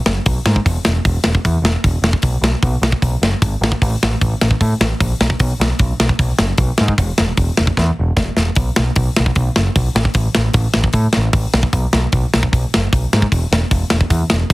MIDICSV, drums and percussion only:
0, 0, Header, 1, 2, 480
1, 0, Start_track
1, 0, Tempo, 395517
1, 801, Time_signature, 4, 2, 24, 8
1, 17635, End_track
2, 0, Start_track
2, 0, Title_t, "Drums"
2, 73, Note_on_c, 9, 38, 110
2, 194, Note_off_c, 9, 38, 0
2, 313, Note_on_c, 9, 46, 66
2, 317, Note_on_c, 9, 36, 121
2, 434, Note_off_c, 9, 46, 0
2, 439, Note_off_c, 9, 36, 0
2, 554, Note_on_c, 9, 38, 108
2, 675, Note_off_c, 9, 38, 0
2, 679, Note_on_c, 9, 36, 76
2, 800, Note_off_c, 9, 36, 0
2, 800, Note_on_c, 9, 36, 100
2, 804, Note_on_c, 9, 46, 60
2, 921, Note_off_c, 9, 36, 0
2, 925, Note_off_c, 9, 46, 0
2, 1030, Note_on_c, 9, 38, 113
2, 1151, Note_off_c, 9, 38, 0
2, 1275, Note_on_c, 9, 36, 112
2, 1276, Note_on_c, 9, 46, 55
2, 1396, Note_off_c, 9, 36, 0
2, 1398, Note_off_c, 9, 46, 0
2, 1501, Note_on_c, 9, 38, 117
2, 1623, Note_off_c, 9, 38, 0
2, 1635, Note_on_c, 9, 36, 79
2, 1756, Note_off_c, 9, 36, 0
2, 1759, Note_on_c, 9, 36, 86
2, 1766, Note_on_c, 9, 46, 54
2, 1880, Note_off_c, 9, 36, 0
2, 1887, Note_off_c, 9, 46, 0
2, 2001, Note_on_c, 9, 38, 108
2, 2122, Note_off_c, 9, 38, 0
2, 2234, Note_on_c, 9, 36, 115
2, 2241, Note_on_c, 9, 46, 61
2, 2355, Note_off_c, 9, 36, 0
2, 2363, Note_off_c, 9, 46, 0
2, 2473, Note_on_c, 9, 38, 109
2, 2586, Note_on_c, 9, 36, 82
2, 2594, Note_off_c, 9, 38, 0
2, 2696, Note_on_c, 9, 46, 60
2, 2706, Note_off_c, 9, 36, 0
2, 2706, Note_on_c, 9, 36, 107
2, 2817, Note_off_c, 9, 46, 0
2, 2827, Note_off_c, 9, 36, 0
2, 2958, Note_on_c, 9, 38, 111
2, 3079, Note_off_c, 9, 38, 0
2, 3187, Note_on_c, 9, 36, 98
2, 3189, Note_on_c, 9, 46, 51
2, 3308, Note_off_c, 9, 36, 0
2, 3310, Note_off_c, 9, 46, 0
2, 3436, Note_on_c, 9, 38, 109
2, 3548, Note_on_c, 9, 36, 79
2, 3558, Note_off_c, 9, 38, 0
2, 3668, Note_off_c, 9, 36, 0
2, 3668, Note_on_c, 9, 36, 84
2, 3673, Note_on_c, 9, 46, 52
2, 3789, Note_off_c, 9, 36, 0
2, 3794, Note_off_c, 9, 46, 0
2, 3920, Note_on_c, 9, 38, 99
2, 4041, Note_off_c, 9, 38, 0
2, 4150, Note_on_c, 9, 36, 117
2, 4154, Note_on_c, 9, 46, 66
2, 4272, Note_off_c, 9, 36, 0
2, 4275, Note_off_c, 9, 46, 0
2, 4412, Note_on_c, 9, 38, 107
2, 4511, Note_on_c, 9, 36, 89
2, 4534, Note_off_c, 9, 38, 0
2, 4633, Note_off_c, 9, 36, 0
2, 4633, Note_on_c, 9, 36, 102
2, 4646, Note_on_c, 9, 46, 63
2, 4754, Note_off_c, 9, 36, 0
2, 4767, Note_off_c, 9, 46, 0
2, 4889, Note_on_c, 9, 38, 117
2, 5010, Note_off_c, 9, 38, 0
2, 5114, Note_on_c, 9, 36, 99
2, 5122, Note_on_c, 9, 46, 59
2, 5236, Note_off_c, 9, 36, 0
2, 5244, Note_off_c, 9, 46, 0
2, 5357, Note_on_c, 9, 38, 120
2, 5469, Note_on_c, 9, 36, 79
2, 5478, Note_off_c, 9, 38, 0
2, 5590, Note_off_c, 9, 36, 0
2, 5591, Note_on_c, 9, 36, 90
2, 5592, Note_on_c, 9, 46, 59
2, 5713, Note_off_c, 9, 36, 0
2, 5713, Note_off_c, 9, 46, 0
2, 5836, Note_on_c, 9, 38, 108
2, 5957, Note_off_c, 9, 38, 0
2, 6074, Note_on_c, 9, 36, 108
2, 6077, Note_on_c, 9, 46, 62
2, 6195, Note_off_c, 9, 36, 0
2, 6199, Note_off_c, 9, 46, 0
2, 6319, Note_on_c, 9, 38, 107
2, 6431, Note_on_c, 9, 36, 85
2, 6441, Note_off_c, 9, 38, 0
2, 6548, Note_on_c, 9, 46, 59
2, 6552, Note_off_c, 9, 36, 0
2, 6554, Note_on_c, 9, 36, 109
2, 6669, Note_off_c, 9, 46, 0
2, 6675, Note_off_c, 9, 36, 0
2, 6813, Note_on_c, 9, 38, 120
2, 6934, Note_off_c, 9, 38, 0
2, 7027, Note_on_c, 9, 46, 55
2, 7033, Note_on_c, 9, 36, 109
2, 7148, Note_off_c, 9, 46, 0
2, 7154, Note_off_c, 9, 36, 0
2, 7280, Note_on_c, 9, 38, 118
2, 7394, Note_on_c, 9, 36, 76
2, 7401, Note_off_c, 9, 38, 0
2, 7513, Note_off_c, 9, 36, 0
2, 7513, Note_on_c, 9, 36, 93
2, 7515, Note_on_c, 9, 46, 56
2, 7634, Note_off_c, 9, 36, 0
2, 7636, Note_off_c, 9, 46, 0
2, 7749, Note_on_c, 9, 38, 106
2, 7870, Note_off_c, 9, 38, 0
2, 7981, Note_on_c, 9, 46, 66
2, 7988, Note_on_c, 9, 36, 121
2, 8102, Note_off_c, 9, 46, 0
2, 8109, Note_off_c, 9, 36, 0
2, 8226, Note_on_c, 9, 38, 109
2, 8347, Note_off_c, 9, 38, 0
2, 8353, Note_on_c, 9, 36, 74
2, 8471, Note_off_c, 9, 36, 0
2, 8471, Note_on_c, 9, 36, 104
2, 8479, Note_on_c, 9, 46, 61
2, 8592, Note_off_c, 9, 36, 0
2, 8600, Note_off_c, 9, 46, 0
2, 8712, Note_on_c, 9, 38, 107
2, 8833, Note_off_c, 9, 38, 0
2, 8948, Note_on_c, 9, 46, 58
2, 8950, Note_on_c, 9, 36, 104
2, 9069, Note_off_c, 9, 46, 0
2, 9072, Note_off_c, 9, 36, 0
2, 9192, Note_on_c, 9, 38, 111
2, 9311, Note_on_c, 9, 36, 79
2, 9313, Note_off_c, 9, 38, 0
2, 9432, Note_off_c, 9, 36, 0
2, 9432, Note_on_c, 9, 36, 93
2, 9440, Note_on_c, 9, 38, 60
2, 9554, Note_off_c, 9, 36, 0
2, 9562, Note_off_c, 9, 38, 0
2, 9910, Note_on_c, 9, 38, 92
2, 9913, Note_on_c, 9, 36, 125
2, 10032, Note_off_c, 9, 38, 0
2, 10034, Note_off_c, 9, 36, 0
2, 10153, Note_on_c, 9, 38, 93
2, 10274, Note_off_c, 9, 38, 0
2, 10382, Note_on_c, 9, 46, 61
2, 10394, Note_on_c, 9, 36, 117
2, 10503, Note_off_c, 9, 46, 0
2, 10515, Note_off_c, 9, 36, 0
2, 10634, Note_on_c, 9, 38, 124
2, 10756, Note_off_c, 9, 38, 0
2, 10869, Note_on_c, 9, 46, 55
2, 10876, Note_on_c, 9, 36, 109
2, 10990, Note_off_c, 9, 46, 0
2, 10997, Note_off_c, 9, 36, 0
2, 11122, Note_on_c, 9, 38, 112
2, 11240, Note_on_c, 9, 36, 77
2, 11243, Note_off_c, 9, 38, 0
2, 11353, Note_on_c, 9, 46, 53
2, 11359, Note_off_c, 9, 36, 0
2, 11359, Note_on_c, 9, 36, 89
2, 11474, Note_off_c, 9, 46, 0
2, 11481, Note_off_c, 9, 36, 0
2, 11600, Note_on_c, 9, 38, 106
2, 11722, Note_off_c, 9, 38, 0
2, 11840, Note_on_c, 9, 46, 59
2, 11841, Note_on_c, 9, 36, 115
2, 11962, Note_off_c, 9, 36, 0
2, 11962, Note_off_c, 9, 46, 0
2, 12086, Note_on_c, 9, 38, 117
2, 12198, Note_on_c, 9, 36, 75
2, 12207, Note_off_c, 9, 38, 0
2, 12303, Note_on_c, 9, 46, 62
2, 12316, Note_off_c, 9, 36, 0
2, 12316, Note_on_c, 9, 36, 110
2, 12425, Note_off_c, 9, 46, 0
2, 12437, Note_off_c, 9, 36, 0
2, 12556, Note_on_c, 9, 38, 117
2, 12677, Note_off_c, 9, 38, 0
2, 12785, Note_on_c, 9, 46, 61
2, 12795, Note_on_c, 9, 36, 112
2, 12906, Note_off_c, 9, 46, 0
2, 12916, Note_off_c, 9, 36, 0
2, 13029, Note_on_c, 9, 38, 115
2, 13150, Note_off_c, 9, 38, 0
2, 13152, Note_on_c, 9, 36, 79
2, 13261, Note_on_c, 9, 46, 61
2, 13271, Note_off_c, 9, 36, 0
2, 13271, Note_on_c, 9, 36, 93
2, 13383, Note_off_c, 9, 46, 0
2, 13393, Note_off_c, 9, 36, 0
2, 13504, Note_on_c, 9, 38, 100
2, 13625, Note_off_c, 9, 38, 0
2, 13752, Note_on_c, 9, 36, 120
2, 13752, Note_on_c, 9, 46, 70
2, 13874, Note_off_c, 9, 36, 0
2, 13874, Note_off_c, 9, 46, 0
2, 14000, Note_on_c, 9, 38, 105
2, 14113, Note_on_c, 9, 36, 79
2, 14121, Note_off_c, 9, 38, 0
2, 14234, Note_on_c, 9, 46, 62
2, 14235, Note_off_c, 9, 36, 0
2, 14235, Note_on_c, 9, 36, 102
2, 14355, Note_off_c, 9, 46, 0
2, 14356, Note_off_c, 9, 36, 0
2, 14477, Note_on_c, 9, 38, 107
2, 14599, Note_off_c, 9, 38, 0
2, 14712, Note_on_c, 9, 46, 55
2, 14717, Note_on_c, 9, 36, 107
2, 14834, Note_off_c, 9, 46, 0
2, 14839, Note_off_c, 9, 36, 0
2, 14970, Note_on_c, 9, 38, 112
2, 15083, Note_on_c, 9, 36, 82
2, 15092, Note_off_c, 9, 38, 0
2, 15205, Note_off_c, 9, 36, 0
2, 15206, Note_on_c, 9, 36, 92
2, 15218, Note_on_c, 9, 46, 49
2, 15327, Note_off_c, 9, 36, 0
2, 15339, Note_off_c, 9, 46, 0
2, 15461, Note_on_c, 9, 38, 102
2, 15582, Note_off_c, 9, 38, 0
2, 15688, Note_on_c, 9, 36, 116
2, 15702, Note_on_c, 9, 46, 56
2, 15810, Note_off_c, 9, 36, 0
2, 15824, Note_off_c, 9, 46, 0
2, 15935, Note_on_c, 9, 38, 109
2, 16047, Note_on_c, 9, 36, 87
2, 16057, Note_off_c, 9, 38, 0
2, 16164, Note_off_c, 9, 36, 0
2, 16164, Note_on_c, 9, 36, 92
2, 16171, Note_on_c, 9, 46, 62
2, 16285, Note_off_c, 9, 36, 0
2, 16293, Note_off_c, 9, 46, 0
2, 16415, Note_on_c, 9, 38, 108
2, 16536, Note_off_c, 9, 38, 0
2, 16641, Note_on_c, 9, 36, 110
2, 16642, Note_on_c, 9, 46, 63
2, 16762, Note_off_c, 9, 36, 0
2, 16763, Note_off_c, 9, 46, 0
2, 16871, Note_on_c, 9, 38, 116
2, 16993, Note_off_c, 9, 38, 0
2, 16998, Note_on_c, 9, 36, 75
2, 17115, Note_on_c, 9, 46, 59
2, 17117, Note_off_c, 9, 36, 0
2, 17117, Note_on_c, 9, 36, 91
2, 17237, Note_off_c, 9, 46, 0
2, 17239, Note_off_c, 9, 36, 0
2, 17352, Note_on_c, 9, 38, 105
2, 17474, Note_off_c, 9, 38, 0
2, 17598, Note_on_c, 9, 36, 112
2, 17635, Note_off_c, 9, 36, 0
2, 17635, End_track
0, 0, End_of_file